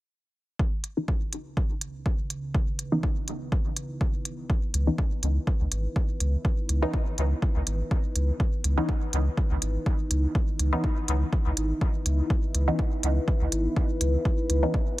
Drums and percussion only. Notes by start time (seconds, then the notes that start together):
0.59 kick
0.84 closed hi-hat
1.08 kick
1.33 closed hi-hat
1.57 kick
1.81 closed hi-hat
2.06 kick
2.30 closed hi-hat
2.54 kick
2.79 closed hi-hat
3.03 kick
3.28 closed hi-hat
3.52 kick
3.76 closed hi-hat
4.01 kick
4.25 closed hi-hat
4.50 kick
4.74 closed hi-hat
4.98 kick
5.23 closed hi-hat
5.47 kick
5.72 closed hi-hat
5.96 kick
6.20 closed hi-hat
6.45 kick
6.69 closed hi-hat
6.94 kick
7.18 closed hi-hat
7.42 kick
7.67 closed hi-hat
7.91 kick
8.16 closed hi-hat
8.40 kick
8.64 closed hi-hat
8.89 kick
9.13 closed hi-hat
9.37 kick
9.62 closed hi-hat
9.86 kick
10.11 closed hi-hat
10.35 kick
10.59 closed hi-hat
10.84 kick
11.08 closed hi-hat
11.33 kick
11.57 closed hi-hat
11.81 kick
12.06 closed hi-hat
12.30 kick
12.55 closed hi-hat
12.79 kick
13.03 closed hi-hat
13.28 kick
13.52 closed hi-hat
13.76 kick
14.01 closed hi-hat
14.25 kick
14.50 closed hi-hat
14.74 kick